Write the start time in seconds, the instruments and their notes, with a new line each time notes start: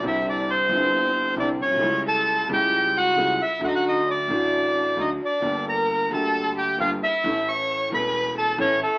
0.02 upright bass C2, grand piano C2 C3 D3 G3 C4 E4, violin E4
0.07 bandoneon E5
0.28 violin D4, bandoneon D5
0.50 violin C4, bandoneon C5
0.69 upright bass G1, grand piano G1 G2 D3 G3 C4
0.73 grand piano E4
1.36 upright bass C2, grand piano C2 C3 D3 G3 C4 E4, violin D4, bandoneon D5
1.62 grand piano A#1, upright bass A#1, violin C#4, bandoneon C#5
1.70 grand piano B1, upright bass B1
1.75 grand piano C2 C#3, upright bass C2
1.80 grand piano C#2 G3 A3 E4, upright bass C#2
2.06 violin A4, bandoneon A5
2.48 upright bass C#2, grand piano C#2 C#3 G3 A3
2.52 grand piano E4, violin G4, bandoneon G5
2.96 violin F#4, bandoneon F#5
3.17 upright bass C#2, grand piano C#2 C#3 G3 A3 E4
3.42 violin E4, bandoneon E5
3.59 upright bass D2, grand piano D2 D3 F#3 A3
3.63 grand piano F#4, violin F#4, bandoneon F#5
3.68 violin D#4, bandoneon D#5
3.75 violin F#4, bandoneon F#5
3.87 violin D#4, bandoneon D#5
4.08 violin D4, bandoneon D5
4.28 upright bass A1, grand piano A1 A2 D3 F#3 A3
4.32 grand piano F#4
4.97 upright bass D2, grand piano D2 D3 F#3 A3 F#4, violin D#4
5.01 bandoneon D#5
5.22 violin D4, bandoneon D5
5.40 grand piano G1 G2 D3 G3 A#3, upright bass G1
5.44 grand piano G4
5.68 violin A#4, bandoneon A#5
6.11 upright bass D2, grand piano D2 D3 G3 A#3 G4, violin A4, bandoneon A5
6.58 violin G4, bandoneon G5
6.77 upright bass G1, grand piano G1 G2 D3 G3 A#3 G4, violin F4, bandoneon F5
7.03 violin E4, bandoneon E5
7.23 upright bass A1, grand piano A1 A2 E3 A3 C#4
7.27 grand piano A4
7.49 violin C#5, bandoneon C#6
7.89 grand piano E1 E2 E3 A3 C#4, upright bass E1
7.94 grand piano A4, violin B4, bandoneon B5
8.38 violin A4, bandoneon A5
8.58 upright bass A1, grand piano A1 A2 E3 A3 C#4 A4, violin C#4, bandoneon C#5
8.82 violin A3, bandoneon A4